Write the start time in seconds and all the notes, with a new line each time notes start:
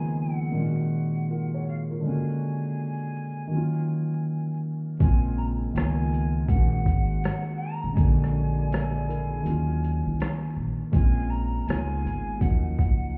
Already playing: C#2 D#3 F3 G#3 A#3 B3 G#5
0.21 F#5
0.51 A#2 D#3 G#3
0.57 A#3 C#4 F4
0.67 F#4
1.30 F4 A#4
1.54 G#4 C#5
1.68 F5
1.90 F4 A#4
2.00 D3 G#3
2.05 A#3 C#4 G#5
2.09 F#4
3.47 D#3 F#3
3.52 A#3 C#4
3.57 F4
4.99 A#1 C#3 G#3 A#3 C4 G#5, kick, closed hi-hat
5.03 F4
5.37 A#5
5.73 C#2 D#3 G#3 A#3 B3 G#5, closed hi-hat
5.78 F4, cross-stick
6.14 closed hi-hat
6.45 A#1 D#3 G#3 F#5, kick, closed hi-hat
6.50 A#3 C#4
6.55 F#4
6.86 G#1, kick, closed hi-hat
7.24 cross-stick, closed hi-hat
7.58 A#5
7.84 B1
7.92 C#3 G#3 G#5
7.96 A#1 D3 A#3 C#4, kick, closed hi-hat
8.01 F#4
8.24 cross-stick
8.59 D5 G#5
8.72 A#4 E5, cross-stick, closed hi-hat
8.95 G#4 D5
9.08 E4 A#4, closed hi-hat
9.30 D4 G#4
9.42 D#2 D#3 F#3
9.46 A#3 C#4, closed hi-hat
9.51 F4
9.84 closed hi-hat
10.06 C2
10.20 cross-stick, closed hi-hat
10.57 A#1
10.92 A#1 G#3 A#3 C4 C#4 G#5, kick, closed hi-hat
10.96 F4
11.30 A#5, shaker
11.67 C#2 G#3 A#3 B3 D#4 G#5, cross-stick, closed hi-hat
11.72 F4
12.05 G#1, closed hi-hat, shaker
12.38 D#2 F#3 A#3 F#5, kick
12.42 C#4 D#4, closed hi-hat
12.47 F3
12.79 C#2, kick, closed hi-hat, shaker